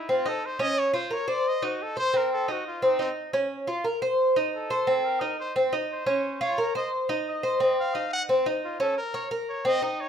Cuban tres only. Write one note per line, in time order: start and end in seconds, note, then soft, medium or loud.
0.09 0.26 C4 medium
0.26 0.59 D#4 medium
0.59 0.93 C#4 medium
0.93 1.11 F4 medium
1.11 1.27 A#4 medium
1.28 1.61 C5 medium
1.62 1.96 D#4 medium
1.97 2.13 C5 medium
2.14 2.47 C4 medium
2.48 2.81 D#4 medium
2.82 2.99 C4 medium
2.99 3.32 D#4 medium
3.33 3.67 C#4 medium
3.67 3.84 F4 medium
3.84 4.01 A#4 medium
4.02 4.35 C5 medium
4.36 4.69 D#4 medium
4.70 4.87 C5 medium
4.87 5.20 C4 medium
5.21 5.54 D#4 medium
5.56 5.72 C4 medium
5.73 6.06 D#4 medium
6.06 6.40 C#4 medium
6.41 6.57 F4 medium
6.58 6.74 A#4 medium
6.75 7.08 C5 medium
7.09 7.42 D#4 medium
7.43 7.60 C5 medium
7.60 7.93 C4 medium
7.95 8.28 D#4 medium
8.29 8.45 C4 medium
8.46 8.79 D#4 medium
8.80 8.96 C#4 medium
9.14 9.30 C#5 medium
9.31 9.64 A#4 medium
9.65 9.81 C4 medium
9.82 10.09 D#4 medium